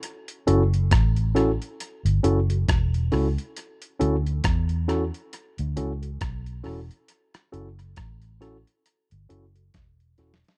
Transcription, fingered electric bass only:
X:1
M:4/4
L:1/16
Q:"Swing 16ths" 1/4=68
K:F#phr
V:1 name="Fingered electric bass" clef=bass
z2 F,,,2 A,,,3 z2 G,,, F,,,2 E,,,2 C,, z | z2 D,,2 E,,3 z2 D,, C,,2 B,,,2 E,,, z | z2 F,,,2 A,,,3 z2 G,,, F,,,2 E,,,2 E,,, z |]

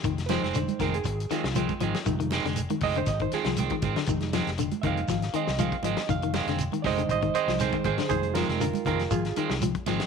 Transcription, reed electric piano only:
X:1
M:4/4
L:1/16
Q:"Swing 16ths" 1/4=119
K:Fdor
V:1 name="Reed electric piano"
z2 [=Bc]4 _B A3 F6- | F2 z4 e c e c [FA]6- | [FA]2 z4 [=ef]4 _e2 f2 e2 | f4 z2 [cde]2 [ce]2 [ce]2 [Ac]2 [Ac]2 |
[Ac]2 [FB]2 [FB]2 [FB]2 [FA]4 z4 |]
V:2 name="Reed electric piano" clef=bass
z2 [G,A,E]6 z8 | [G,A,E]2 z12 z2 | [G,A,E]2 z4 [G,A,E]2 z8 | z6 [G,A,E]6 [G,A,E]2 z2 |
[G,A,E]6 z4 [G,A,E]2 z4 |]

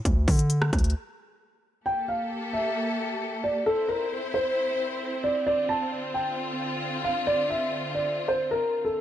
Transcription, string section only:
X:1
M:4/4
L:1/8
Q:1/4=133
K:Dm
V:1 name="String section"
z8 | [B,GA]8 | [CEc]8 | [D,F]8- |
[D,F]8 |]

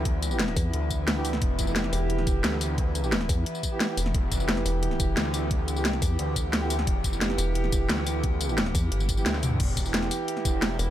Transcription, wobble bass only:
X:1
M:4/4
L:1/8
Q:1/4=176
K:Ephr
V:1 name="Wobble bass" clef=bass
z3 E,, z4 | z3 E,,,2 E,,, z2 | z3 E,, z3 E,,, | z3 E,,,2 E,,, z2 |
z3 E,, z4 | z3 E,,,2 E,,, z2 | z3 E,, G,,,2 z2 | z6 z E,,, |]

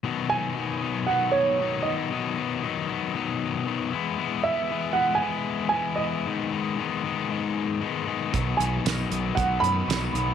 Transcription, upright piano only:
X:1
M:4/4
L:1/8
Q:1/4=116
K:B
V:1 name="Upright piano"
z g3 f c2 d- | d4- d z3 | z e2 f g2 g d- | d z6 z |
z g3 f b3 |]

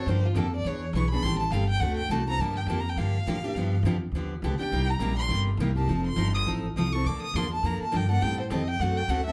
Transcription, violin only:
X:1
M:4/4
L:1/8
Q:"Swing" 1/4=206
K:Gm
V:1 name="Violin"
c F A d ^c2 ^c' =b | c' a f g ^f g a b | a g (3a b g f4- | f2 z4 z g- |
g b2 c' z3 a- | a c'2 e' z2 e' ^c' | d' e' c' a b a g ^f | g c e g ^f g f =e |]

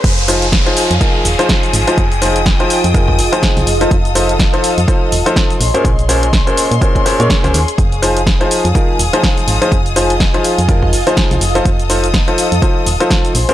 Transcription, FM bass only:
X:1
M:4/4
L:1/16
Q:"Swing 16ths" 1/4=124
K:Fm
V:1 name="FM bass" clef=bass
F,,,4- F,,, z2 F,, z2 E,,, z3 A,,, z | F,,,4- F,,, z2 F,,3 F,,, z2 C,, F,,,2 | F,,,4- F,,, z2 F,, z2 E,,, z3 B,,, z | B,,,4- B,,, z2 B,, z3 B,, z D,, E,, z |
F,,,4- F,,, z2 F,, z2 E,,, z3 A,,, z | F,,,4- F,,, z2 F,,3 F,,, z2 C,, F,,,2 | F,,,4- F,,, z2 F,, z2 E,,, z3 B,,, z |]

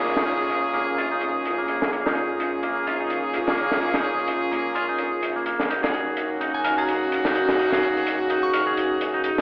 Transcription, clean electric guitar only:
X:1
M:4/4
L:1/16
Q:"Swing 16ths" 1/4=127
K:Bbm
V:1 name="Clean electric guitar"
B, E4 z B,2 F E4 B, B,2 | B, E4 z B,2 F E4 B, B,2 | B, E4 z B,2 F E4 B, B,2 | E A4 z E2 B A4 E E2 |
E A4 z E2 B A4 E E2 |]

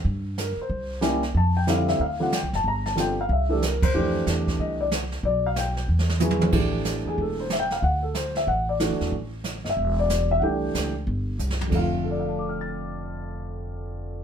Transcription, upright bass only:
X:1
M:4/4
L:1/8
Q:"Swing" 1/4=185
K:F
V:1 name="Upright bass" clef=bass
G,,3 z C,,4 | F,,4 D,,2- (3D,, C,, _G,,, | G,,,4 C,,3 E,, | F,,2 E,,2 C,,4 |
=B,,,4 E,,4 | A,,,3 E,, E,,,4 | D,,4 A,,,2- (3A,,, D,, E,, | A,,,3 G,,, E,,,4 |
C,,2 _D,,2 G,,,2 C,,2 | F,,,8- | F,,,8 |]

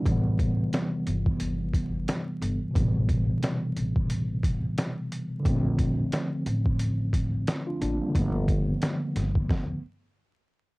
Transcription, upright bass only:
X:1
M:4/4
L:1/16
Q:"Swing 16ths" 1/4=89
K:Am
V:1 name="Upright bass" clef=bass
A,,,4 z2 G,,,6 z2 G,,, z | A,,,4 z2 A,,,6 z4 | _B,,,4 z2 A,,,6 z2 A,,, z | G,,,4 z2 G,,,2 z8 |]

